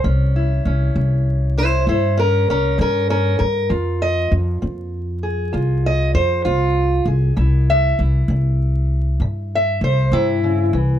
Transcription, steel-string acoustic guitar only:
0.04 C3 C#4
0.36 E4
0.67 C#4
0.96 G3
1.58 E4 C5
1.88 C3 E4 C5
2.17 C#4 A#4
2.50 C#4 A#4
2.78 G3 C#4 A#4
3.10 C#4 A#4
3.39 A#4
3.69 F2 F4
4.02 D#5
4.62 C4
5.23 G#4
5.53 F2 F4
5.86 D#5
6.15 C5
6.45 C4 F4
7.08 G#4
7.36 C3 E4
7.70 E5
8.00 E4
8.30 C4
9.21 C3
9.55 E5
9.84 C5
10.13 C3 E4
10.44 C#3
10.74 E3

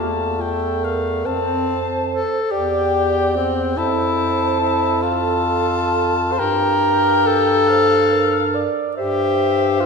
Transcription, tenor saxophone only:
Already playing: A3
1.26 C4
2.09 A4
2.51 G4
3.36 C4
3.77 E4
4.60 E4
5.03 F4
6.32 C5
6.39 A#4
7.26 A4
8.96 G4
9.80 F4

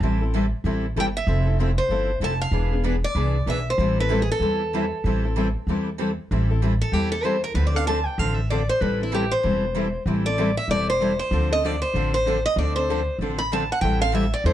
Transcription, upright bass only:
0.00 A1
0.64 A1
0.96 G1
1.27 F1
1.89 G1
2.20 F1
2.51 E1
3.15 C2
3.46 B1
3.78 A1
4.40 E2
5.04 A1
5.67 E2
6.31 A1
6.92 E2
7.54 D2
8.18 A1
8.81 A1
9.44 E1
10.06 A1
10.68 E1
11.31 D2
11.94 A1
12.56 D2
13.19 A1
13.82 A1
14.44 E2

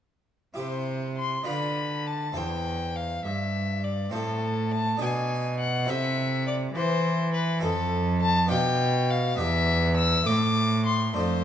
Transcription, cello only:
0.57 C3
1.47 D3
2.37 E2
3.26 G2
4.13 A2
5.01 B2
5.89 C3
6.75 E3
7.63 F2
8.51 B2
9.40 E2
10.28 A2
11.17 F2

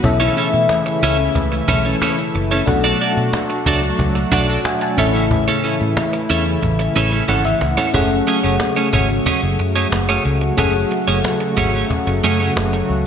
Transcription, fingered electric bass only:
0.04 B1
0.54 B2
1.03 C#2
1.36 C#2
1.69 B1
2.35 F#1
2.68 B1
3.17 B2
3.66 C#2
3.99 C#2
4.32 B1
4.98 A1
5.81 A2
6.30 E2
6.63 A1
6.96 A1
7.29 G#1
7.62 C#2
7.94 F#1
8.44 F#1
8.93 G#1
9.43 F#1
9.59 F#2
9.92 F#1
10.25 C#2
10.58 F#1
11.08 F#1
11.58 G#1
12.07 F#1
12.24 F#2
12.56 F#1
12.89 C#2

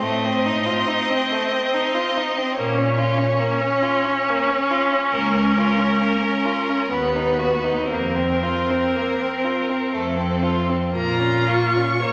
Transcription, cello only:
0.02 A2
2.59 A#2
5.15 C#2
6.92 D#2
7.92 F2
9.95 F2
10.96 A#2
12.06 A#2

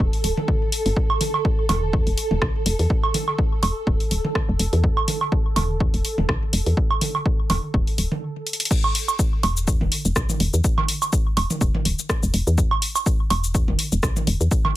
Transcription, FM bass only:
0.24 D1
0.86 G1
1.69 E1
1.93 E2
2.07 E1
2.31 E1
2.42 B1
2.66 E1
2.79 E2
3.63 E1
3.87 E1
4.11 D1
4.49 E1
4.59 E1
4.73 E2
5.56 E1
5.80 E2
5.94 E1
6.18 E1
6.29 B1
6.53 E1
6.66 E2
7.50 E1
7.74 E1
7.98 D1
9.43 E1
9.68 E2
9.81 E1
10.05 E1
10.16 B1
10.40 E1
10.54 E2
11.37 E1
11.61 E1
11.85 D1
12.23 E1
12.34 E1
12.47 E2
13.30 E1
13.55 E2
13.68 E1
13.92 E1
14.03 B1
14.27 E1
14.41 E2

